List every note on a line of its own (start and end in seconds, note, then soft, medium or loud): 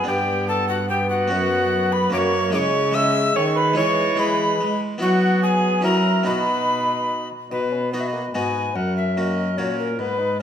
0.04 1.27 G2 medium
0.04 1.33 G2 medium
0.04 1.26 B3 medium
0.04 1.26 D4 medium
0.04 0.49 G4 medium
0.04 0.48 G5 loud
0.08 0.89 B3 medium
0.48 0.69 A4 loud
0.48 0.68 A5 loud
0.69 0.79 F#4 medium
0.69 0.89 F#5 loud
0.89 1.30 B3 medium
0.89 1.00 G4 medium
0.89 1.10 G5 loud
1.10 1.95 F#4 loud
1.10 1.94 F#5 loud
1.28 2.09 F#2 medium
1.28 2.12 F#2 medium
1.28 2.09 B3 medium
1.28 2.12 B3 medium
1.28 2.10 C#4 medium
1.28 2.10 F#4 medium
1.92 2.12 B4 loud
1.92 2.12 B5 loud
2.10 2.55 F#2 medium
2.10 2.51 F#2 medium
2.10 2.51 A#3 medium
2.10 2.55 A#3 medium
2.10 2.52 C#4 medium
2.10 2.53 F#4 medium
2.10 2.54 C#5 loud
2.10 2.19 D6 loud
2.18 2.53 C#6 loud
2.50 3.36 C#3 loud
2.50 3.33 C#3 medium
2.50 2.90 G#3 medium
2.50 2.94 G#3 medium
2.50 2.93 E4 medium
2.50 2.93 G#4 medium
2.50 2.95 C#5 loud
2.50 2.60 D6 loud
2.58 2.96 C#6 loud
2.92 3.33 G#3 medium
2.92 3.36 G#3 medium
2.92 3.74 G#4 medium
2.92 3.74 E5 medium
2.92 3.35 E5 loud
2.92 3.38 E6 loud
3.35 3.74 D#3 medium
3.35 3.79 D#3 medium
3.35 3.77 G#3 medium
3.35 3.45 C#5 loud
3.35 3.59 C#6 loud
3.56 3.76 B4 loud
3.56 3.78 B5 loud
3.73 4.56 E3 medium
3.73 4.14 G#3 medium
3.73 4.06 G#3 medium
3.73 4.16 E4 medium
3.73 4.17 G#4 medium
3.73 4.18 C#5 loud
3.78 4.60 E3 loud
3.78 4.21 C#6 loud
4.15 4.59 G#3 medium
4.15 4.72 G#3 medium
4.15 4.98 E4 medium
4.15 4.98 G#4 medium
4.20 4.80 B4 medium
4.20 4.81 B5 loud
4.61 4.98 G#3 medium
4.61 5.01 G#3 medium
4.98 5.83 F#3 medium
4.98 5.81 F#3 medium
4.98 5.80 B3 medium
4.98 5.86 B3 medium
4.98 5.81 E4 medium
4.98 5.81 F#4 medium
4.98 5.44 F#4 loud
4.98 5.40 F#5 loud
5.43 5.84 G#4 medium
5.43 5.83 G#5 loud
5.81 6.23 F#3 medium
5.81 6.29 F#3 medium
5.81 6.23 C#4 medium
5.81 6.24 E4 medium
5.81 6.26 E4 medium
5.81 6.24 F#4 medium
5.81 6.25 A#4 medium
5.81 6.25 A#5 loud
6.23 7.28 B2 medium
6.23 7.32 B2 medium
6.23 7.46 B3 medium
6.23 7.47 D#4 medium
6.23 7.29 D#4 medium
6.23 7.47 F#4 medium
6.23 7.28 B4 medium
6.23 7.28 B5 loud
7.51 8.30 B2 soft
7.51 8.30 B2 medium
7.51 7.60 D#4 soft
7.51 7.90 B4 medium
7.71 7.81 C#4 medium
7.92 8.02 B3 medium
7.92 8.23 B3 soft
7.92 8.23 D#4 soft
7.92 8.24 F#4 soft
7.92 8.34 B4 medium
7.92 8.02 D#5 medium
8.00 8.09 E5 medium
8.08 8.34 D#5 medium
8.13 8.22 A#3 medium
8.34 8.75 G#2 soft
8.34 8.72 G#2 soft
8.34 8.76 B3 medium
8.34 8.64 B3 soft
8.34 8.64 D#4 soft
8.34 8.64 F#4 soft
8.34 8.77 B4 medium
8.34 8.77 G#5 medium
8.75 9.54 F#2 medium
8.75 9.59 F#2 medium
8.75 10.00 C#4 medium
8.75 9.16 A#4 medium
8.75 8.96 F#5 medium
8.97 9.17 E5 medium
9.16 9.47 A#3 soft
9.16 9.47 C#4 soft
9.16 9.47 F#4 medium
9.16 9.57 A#4 medium
9.16 9.22 E5 medium
9.21 9.59 D#5 medium
9.57 10.00 A#2 medium
9.57 9.95 A#2 soft
9.57 9.88 A#3 soft
9.57 9.88 C#4 soft
9.57 9.88 F#4 medium
9.57 10.01 A#4 medium
9.57 9.78 C#5 medium
9.79 10.01 A#4 medium
9.98 10.42 G#2 medium
9.98 10.20 B3 medium
9.98 10.39 B4 medium
9.98 10.40 B4 medium
10.19 10.38 D#4 medium